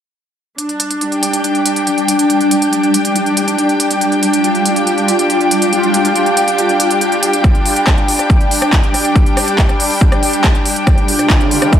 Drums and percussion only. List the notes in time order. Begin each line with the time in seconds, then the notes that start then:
0.58 closed hi-hat
0.69 closed hi-hat
0.80 closed hi-hat
0.91 closed hi-hat
1.01 closed hi-hat
1.12 closed hi-hat
1.23 closed hi-hat
1.33 closed hi-hat
1.44 closed hi-hat
1.55 closed hi-hat
1.66 closed hi-hat
1.76 closed hi-hat
1.87 closed hi-hat
1.98 closed hi-hat
2.08 closed hi-hat
2.19 closed hi-hat
2.30 closed hi-hat
2.41 closed hi-hat
2.51 closed hi-hat
2.62 closed hi-hat
2.73 closed hi-hat
2.83 closed hi-hat
2.94 closed hi-hat
3.05 closed hi-hat
3.16 closed hi-hat
3.26 closed hi-hat
3.37 closed hi-hat
3.48 closed hi-hat
3.58 closed hi-hat
3.69 closed hi-hat
3.80 closed hi-hat
3.91 closed hi-hat
4.01 closed hi-hat
4.12 closed hi-hat
4.23 closed hi-hat
4.33 closed hi-hat
4.44 closed hi-hat
4.55 closed hi-hat
4.66 closed hi-hat
4.76 closed hi-hat
4.87 closed hi-hat
4.98 closed hi-hat
5.08 closed hi-hat
5.19 closed hi-hat
5.30 closed hi-hat
5.41 closed hi-hat
5.51 closed hi-hat
5.62 closed hi-hat
5.73 closed hi-hat
5.83 closed hi-hat
5.94 closed hi-hat
6.05 closed hi-hat
6.16 closed hi-hat
6.26 closed hi-hat
6.37 closed hi-hat
6.48 closed hi-hat
6.58 closed hi-hat
6.69 closed hi-hat
6.80 closed hi-hat
6.91 closed hi-hat
7.01 closed hi-hat
7.12 closed hi-hat
7.23 closed hi-hat
7.33 closed hi-hat
7.44 kick, cross-stick, closed hi-hat
7.55 closed hi-hat
7.66 open hi-hat
7.76 closed hi-hat
7.87 kick, cross-stick, clap, closed hi-hat
7.98 closed hi-hat
8.08 open hi-hat
8.19 cross-stick, closed hi-hat
8.30 kick, closed hi-hat
8.41 closed hi-hat
8.51 open hi-hat
8.62 cross-stick, closed hi-hat
8.73 kick, clap, closed hi-hat
8.83 closed hi-hat
8.94 cross-stick, open hi-hat
9.05 closed hi-hat
9.16 kick, closed hi-hat
9.26 closed hi-hat
9.37 cross-stick, open hi-hat
9.48 closed hi-hat
9.58 kick, clap, closed hi-hat
9.69 cross-stick, closed hi-hat
9.80 open hi-hat
9.91 open hi-hat
10.01 kick, closed hi-hat
10.12 cross-stick, closed hi-hat
10.23 open hi-hat
10.33 closed hi-hat
10.44 kick, cross-stick, clap, closed hi-hat
10.55 closed hi-hat
10.66 open hi-hat
10.76 closed hi-hat
10.87 kick, cross-stick, closed hi-hat
10.98 closed hi-hat
11.08 open hi-hat
11.19 cross-stick, closed hi-hat
11.30 kick, clap, closed hi-hat
11.41 closed hi-hat
11.51 open hi-hat
11.62 cross-stick, closed hi-hat
11.73 kick, closed hi-hat